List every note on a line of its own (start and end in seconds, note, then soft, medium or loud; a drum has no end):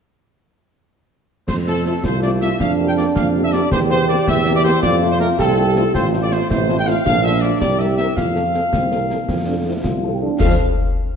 1.48 1.95 F2 medium
1.48 1.56 C5 medium
1.48 concert bass drum medium
1.48 snare medium
1.48 crash soft
1.67 1.74 A3 soft
1.67 1.74 C4 medium
1.67 1.74 F4 soft
1.67 1.85 A4 medium
1.67 snare soft
1.85 1.93 A3 soft
1.85 1.93 C4 medium
1.85 1.93 F4 medium
1.85 2.03 A4 medium
1.85 snare soft
2.04 2.51 C2 medium
2.04 2.56 F4 medium
2.04 2.22 C5 medium
2.04 concert bass drum medium
2.04 snare medium
2.22 2.30 A3 medium
2.22 2.29 C4 medium
2.22 2.30 F4 medium
2.22 2.31 D5 medium
2.22 snare medium
2.41 2.48 A3 medium
2.41 2.48 C4 medium
2.41 2.48 F4 medium
2.41 2.59 E5 medium
2.41 snare medium
2.60 3.07 F2 medium
2.60 3.67 D4 medium
2.60 2.73 F5 medium
2.60 concert bass drum medium
2.60 snare medium
2.79 2.86 A#3 medium
2.79 2.86 D4 medium
2.79 2.85 G4 medium
2.88 2.92 G5 medium
2.97 3.04 A#3 medium
2.97 3.04 D4 medium
2.97 3.04 G4 medium
2.97 3.06 D5 medium
2.97 snare soft
3.16 3.62 F2 medium
3.16 3.28 F5 medium
3.16 concert bass drum medium
3.16 snare medium
3.35 3.41 A#3 medium
3.35 3.42 D4 medium
3.35 3.42 G4 medium
3.44 3.52 E5 medium
3.53 3.60 A#3 medium
3.53 3.60 D4 medium
3.53 3.60 G4 medium
3.53 3.71 D5 medium
3.53 snare medium
3.71 4.18 E2 medium
3.71 4.79 G4 medium
3.71 3.80 C5 loud
3.71 concert bass drum medium
3.71 snare medium
3.90 3.96 A#3 medium
3.90 3.97 C4 medium
3.90 3.97 G4 medium
3.90 4.08 C5 loud
3.90 snare soft
4.08 4.15 A#3 medium
4.08 4.15 C4 medium
4.08 4.15 G4 medium
4.08 4.26 D5 medium
4.08 snare soft
4.27 4.73 E2 medium
4.27 4.53 E5 loud
4.27 concert bass drum medium
4.27 snare medium
4.46 4.53 A#3 medium
4.46 4.53 C4 medium
4.46 4.53 G4 medium
4.46 snare medium
4.56 4.64 D5 loud
4.64 4.71 A#3 medium
4.64 4.71 C4 medium
4.64 4.71 G4 medium
4.64 4.82 C5 loud
4.64 snare medium
4.83 5.29 F2 medium
4.83 5.35 F4 medium
4.83 4.95 D5 loud
4.83 concert bass drum medium
4.83 snare medium
5.01 5.08 A3 medium
5.01 5.08 C4 medium
5.01 5.08 F4 medium
5.11 5.15 C5 medium
5.19 5.26 A3 medium
5.19 5.27 C4 medium
5.19 5.27 F4 medium
5.19 5.28 A#4 medium
5.19 snare soft
5.39 5.85 C2 medium
5.39 5.97 G4 medium
5.39 5.91 A4 medium
5.39 concert bass drum medium
5.39 snare medium
5.56 5.64 A3 medium
5.56 5.64 C4 medium
5.56 5.63 F4 medium
5.76 5.82 A3 medium
5.76 5.82 C4 medium
5.76 5.83 F4 medium
5.76 snare medium
5.94 6.41 A1 medium
5.94 6.50 F4 medium
5.94 6.07 C5 medium
5.94 concert bass drum medium
5.94 snare medium
5.94 crash soft
6.12 6.19 A3 medium
6.12 6.19 C4 medium
6.12 6.19 F4 medium
6.12 snare soft
6.23 6.31 D5 medium
6.31 6.38 A3 medium
6.31 6.38 C4 medium
6.31 6.38 F4 medium
6.31 6.50 C5 medium
6.31 snare medium
6.50 6.97 A1 medium
6.50 7.08 E4 medium
6.50 6.76 C5 medium
6.50 concert bass drum medium
6.50 snare medium
6.68 6.75 A3 medium
6.68 6.75 C4 medium
6.68 6.75 F4 medium
6.68 snare soft
6.79 6.87 G5 medium
6.87 6.94 A3 medium
6.87 6.94 C4 medium
6.87 6.94 F4 medium
6.87 7.05 F5 medium
6.87 snare medium
7.06 7.52 A#1 medium
7.06 7.64 D4 medium
7.06 7.23 F5 loud
7.06 concert bass drum medium
7.06 snare medium
7.24 7.31 A3 medium
7.24 7.31 D4 medium
7.24 7.31 F4 medium
7.24 7.41 E5 loud
7.42 7.49 A3 medium
7.42 7.49 D4 medium
7.42 7.49 F4 medium
7.42 7.59 D5 medium
7.42 snare soft
7.61 8.08 C2 medium
7.61 8.01 G4 medium
7.61 7.78 D5 medium
7.61 concert bass drum medium
7.61 snare medium
7.79 7.86 G3 soft
7.79 7.86 C4 medium
7.79 7.87 A#4 soft
7.79 7.96 E5 medium
7.97 8.05 G3 soft
7.97 8.05 C4 soft
7.97 8.06 A#4 soft
7.97 8.15 E5 medium
7.97 snare medium
8.17 8.64 F2 medium
8.17 8.66 F4 medium
8.17 9.80 F5 medium
8.17 concert bass drum medium
8.17 snare medium
8.35 8.42 F3 soft
8.35 8.42 C4 soft
8.35 8.42 A4 soft
8.35 snare soft
8.54 8.61 F3 soft
8.54 8.61 C4 soft
8.54 8.61 A4 soft
8.54 snare soft
8.73 9.15 C2 medium
8.73 8.92 C4 medium
8.73 concert bass drum medium
8.73 snare medium
8.91 8.98 F3 soft
8.91 9.09 A#3 medium
8.91 8.97 C4 soft
8.91 8.98 A4 soft
8.91 snare soft
9.09 9.17 F3 soft
9.09 9.18 A#3 medium
9.09 9.17 C4 soft
9.09 9.17 A4 soft
9.09 snare medium
9.28 9.75 F2 medium
9.28 9.36 C4 medium
9.28 concert bass drum medium
9.28 snare medium
9.46 9.54 F3 soft
9.46 9.54 C4 soft
9.46 9.55 D4 medium
9.46 9.54 A4 soft
9.65 9.72 F3 soft
9.65 9.72 C4 soft
9.65 9.83 E4 soft
9.65 9.72 A4 soft
9.84 10.31 C2 medium
9.84 10.10 F4 medium
9.84 concert bass drum medium
9.84 snare medium
10.03 10.10 F3 soft
10.03 10.09 C4 soft
10.03 10.10 A4 soft
10.13 10.21 G4 soft
10.22 10.28 F3 soft
10.22 10.29 C4 soft
10.22 10.39 D4 medium
10.22 10.28 A4 soft
10.39 10.56 F2 medium
10.39 10.55 F3 medium
10.39 10.55 C4 medium
10.39 10.55 A4 medium
10.39 10.55 F5 medium
10.39 concert bass drum loud
10.39 snare medium
10.39 crash medium